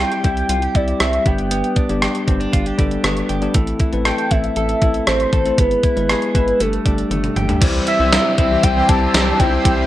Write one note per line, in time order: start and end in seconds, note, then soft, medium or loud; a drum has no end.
0.00 0.23 G3 medium
0.00 2.56 G3 medium
0.00 0.23 C4 medium
0.00 0.23 E4 medium
0.00 0.24 E4 medium
0.00 0.12 F4 medium
0.00 0.24 G4 medium
0.00 0.22 G5 loud
0.12 0.49 G4 medium
0.12 closed hi-hat soft
0.23 0.43 C2 medium
0.23 0.55 G3 medium
0.23 0.55 C4 medium
0.23 0.55 E4 medium
0.23 0.74 E4 medium
0.23 0.55 G4 medium
0.23 0.77 G5 loud
0.23 kick medium
0.23 closed hi-hat medium
0.37 closed hi-hat soft
0.49 0.68 C2 loud
0.49 0.62 F4 medium
0.49 closed hi-hat medium
0.62 1.31 G4 medium
0.62 closed hi-hat soft
0.74 0.93 C2 medium
0.74 1.14 G3 medium
0.74 1.14 C4 medium
0.74 1.31 E4 medium
0.74 1.14 E4 medium
0.74 1.14 G4 medium
0.74 1.02 D5 medium
0.74 kick medium
0.74 closed hi-hat medium
0.88 closed hi-hat soft
1.00 1.19 C2 medium
1.00 1.25 C4 medium
1.00 1.29 E5 medium
1.00 cross-stick loud
1.00 closed hi-hat medium
1.13 closed hi-hat soft
1.26 1.62 G1 loud
1.26 1.77 G3 medium
1.26 1.77 B3 medium
1.26 1.50 B3 medium
1.26 1.77 D4 medium
1.26 1.77 G4 medium
1.26 2.03 G5 medium
1.26 kick medium
1.26 closed hi-hat medium
1.38 closed hi-hat soft
1.51 3.02 B3 medium
1.51 closed hi-hat medium
1.64 closed hi-hat soft
1.76 2.27 D4 medium
1.76 kick medium
1.76 closed hi-hat medium
1.89 2.08 G1 medium
1.89 2.13 G3 medium
1.89 2.13 B3 medium
1.89 2.13 D4 medium
1.89 2.13 G4 medium
1.89 closed hi-hat soft
2.02 2.52 G4 medium
2.02 cross-stick medium
2.02 closed hi-hat medium
2.15 closed hi-hat soft
2.27 2.46 G1 medium
2.27 2.59 G3 medium
2.27 2.59 B3 medium
2.27 2.40 C4 medium
2.27 2.59 D4 medium
2.27 2.59 G4 medium
2.27 kick medium
2.27 closed hi-hat medium
2.40 2.77 D4 soft
2.40 closed hi-hat soft
2.53 2.72 G1 loud
2.53 2.66 F4 medium
2.53 kick medium
2.53 closed hi-hat medium
2.66 3.28 G4 medium
2.66 closed hi-hat soft
2.78 2.97 G1 loud
2.78 3.17 G3 medium
2.78 3.17 B3 medium
2.78 3.60 D4 medium
2.78 3.17 D4 medium
2.78 3.18 A4 medium
2.78 kick medium
2.78 closed hi-hat medium
2.91 closed hi-hat soft
3.04 3.22 G1 loud
3.04 3.60 B3 medium
3.04 cross-stick loud
3.04 closed hi-hat medium
3.17 closed hi-hat soft
3.29 3.48 G1 medium
3.29 3.60 G4 medium
3.29 closed hi-hat medium
3.41 3.50 G3 medium
3.41 3.50 B3 medium
3.41 3.50 D4 medium
3.41 3.50 G4 medium
3.41 closed hi-hat soft
3.54 3.73 A1 loud
3.54 5.58 E3 medium
3.54 3.78 A3 medium
3.54 3.78 C4 medium
3.54 3.78 E4 medium
3.54 3.78 A4 medium
3.54 kick loud
3.54 closed hi-hat loud
3.67 closed hi-hat soft
3.80 4.31 E4 medium
3.80 kick medium
3.80 closed hi-hat medium
3.92 4.11 A1 medium
3.92 4.16 A3 medium
3.92 4.16 C4 medium
3.92 4.16 E4 medium
3.92 4.16 B4 medium
3.92 closed hi-hat soft
4.05 4.56 A4 medium
4.05 4.33 G5 loud
4.05 cross-stick medium
4.05 closed hi-hat medium
4.18 closed hi-hat soft
4.30 4.49 A1 medium
4.30 4.62 A3 medium
4.30 4.62 C4 medium
4.30 4.81 E4 medium
4.30 4.62 E4 medium
4.30 4.63 A4 medium
4.30 4.56 E5 medium
4.30 kick medium
4.30 closed hi-hat medium
4.44 closed hi-hat soft
4.56 4.75 A1 medium
4.56 5.32 A4 medium
4.56 5.04 E5 loud
4.56 closed hi-hat medium
4.69 closed hi-hat soft
4.81 5.00 A1 medium
4.81 5.21 A3 medium
4.81 5.21 C4 medium
4.81 5.21 E4 medium
4.81 5.63 E4 medium
4.81 5.21 A4 medium
4.81 kick medium
4.81 closed hi-hat medium
4.94 closed hi-hat soft
5.07 5.26 A1 loud
5.07 5.58 C4 medium
5.07 5.61 C5 loud
5.07 cross-stick loud
5.07 closed hi-hat medium
5.20 closed hi-hat soft
5.33 5.51 A1 medium
5.33 5.63 A4 medium
5.33 kick medium
5.33 closed hi-hat medium
5.45 5.53 A3 medium
5.45 5.53 C4 medium
5.45 5.53 E4 medium
5.45 5.54 A4 medium
5.45 closed hi-hat soft
5.58 5.77 G#1 loud
5.58 5.81 G#3 medium
5.58 5.81 B3 medium
5.58 6.60 B3 medium
5.58 5.82 E4 medium
5.58 5.82 G#4 medium
5.58 6.34 B4 loud
5.58 kick loud
5.58 closed hi-hat loud
5.71 closed hi-hat soft
5.83 6.34 E4 medium
5.83 kick medium
5.83 closed hi-hat medium
5.96 6.15 G#1 loud
5.96 6.19 G#3 medium
5.96 6.20 B3 medium
5.96 6.20 E4 medium
5.96 6.20 B4 medium
5.96 closed hi-hat soft
6.09 6.65 G#4 medium
6.09 cross-stick medium
6.09 closed hi-hat medium
6.22 closed hi-hat soft
6.34 6.53 G#1 loud
6.34 6.60 G#3 medium
6.34 6.60 B3 medium
6.34 6.60 E4 medium
6.34 6.65 E4 medium
6.34 6.63 B4 medium
6.34 6.60 B4 medium
6.34 kick medium
6.34 closed hi-hat medium
6.48 closed hi-hat soft
6.59 6.78 G1 loud
6.59 6.80 G3 medium
6.59 6.80 A3 medium
6.59 7.10 A3 medium
6.59 6.81 D4 medium
6.59 6.81 G4 medium
6.59 7.37 A4 medium
6.59 closed hi-hat medium
6.73 closed hi-hat soft
6.85 7.04 G1 loud
6.85 7.24 G3 medium
6.85 7.24 A3 medium
6.85 7.67 D4 medium
6.85 7.24 D4 medium
6.85 7.25 G4 medium
6.85 kick medium
6.85 closed hi-hat medium
6.98 closed hi-hat soft
7.10 7.29 G1 loud
7.10 7.67 A3 medium
7.10 closed hi-hat medium
7.10 high tom soft
7.24 closed hi-hat soft
7.24 mid tom medium
7.36 7.54 G1 medium
7.36 8.12 G4 medium
7.36 closed hi-hat medium
7.36 mid tom medium
7.48 7.56 G3 medium
7.48 7.57 A3 medium
7.48 7.57 D4 medium
7.48 7.57 G4 medium
7.48 closed hi-hat soft
7.48 floor tom medium
7.61 7.80 C2 loud
7.61 8.37 C3 medium
7.61 9.64 E3 medium
7.61 7.85 G3 medium
7.61 8.38 G3 loud
7.61 9.87 C4 medium
7.61 7.85 C4 medium
7.61 8.37 C4 loud
7.61 7.85 E4 medium
7.61 9.87 G4 medium
7.61 7.85 G4 medium
7.61 7.85 C5 loud
7.61 9.87 E5 medium
7.61 9.87 C6 medium
7.61 kick loud
7.61 closed hi-hat loud
7.61 crash loud
7.87 8.37 E4 medium
7.87 8.35 E5 loud
7.87 closed hi-hat medium
7.99 8.18 C2 loud
7.99 8.23 G3 medium
7.99 8.23 C4 medium
7.99 8.23 E4 medium
7.99 8.23 G4 medium
7.99 8.24 C5 medium
8.12 8.25 F4 medium
8.12 snare loud
8.12 closed hi-hat medium
8.12 tambourine medium
8.25 8.62 G4 medium
8.37 8.56 C2 loud
8.37 8.69 G3 medium
8.37 8.63 G3 soft
8.37 8.63 C4 soft
8.37 8.69 C4 medium
8.37 8.88 E4 medium
8.37 8.69 E4 medium
8.37 8.69 G4 medium
8.37 8.70 C5 medium
8.37 8.65 E5 medium
8.37 kick medium
8.37 closed hi-hat medium
8.51 8.61 E3 medium
8.51 8.61 C4 medium
8.51 8.61 G4 medium
8.62 8.82 C2 loud
8.62 9.12 C3 medium
8.62 9.14 G3 medium
8.62 9.16 C4 medium
8.62 9.13 G4 medium
8.62 8.90 G5 loud
8.62 kick medium
8.62 closed hi-hat loud
8.76 8.87 E3 loud
8.76 8.87 C4 loud
8.76 8.87 G4 loud
8.88 9.07 C2 loud
8.88 9.00 E3 loud
8.88 9.20 G3 medium
8.88 9.20 C4 medium
8.88 9.00 C4 loud
8.88 9.20 E4 medium
8.88 9.39 E4 medium
8.88 9.20 G4 medium
8.88 9.00 G4 loud
8.88 9.20 C5 medium
8.88 9.40 A5 loud
8.88 kick medium
8.88 closed hi-hat medium
9.13 9.32 C2 loud
9.13 9.63 C3 medium
9.13 9.51 E3 loud
9.13 9.64 G3 medium
9.13 9.51 C4 loud
9.13 9.66 C4 medium
9.13 9.87 G4 medium
9.13 9.51 G4 loud
9.13 snare loud
9.13 closed hi-hat medium
9.13 tambourine medium
9.39 9.58 C2 medium
9.39 9.55 G3 medium
9.39 9.55 C4 medium
9.39 9.55 E4 medium
9.39 9.87 E4 medium
9.39 9.55 G4 medium
9.39 9.55 C5 medium
9.39 9.87 G5 loud
9.39 kick loud
9.39 closed hi-hat medium
9.64 9.83 C2 loud
9.64 9.87 C3 medium
9.64 9.87 E3 medium
9.64 9.87 G3 medium
9.64 9.87 C4 medium
9.64 9.87 E4 medium
9.64 9.87 G4 medium
9.64 9.87 C5 medium
9.64 kick loud
9.64 closed hi-hat loud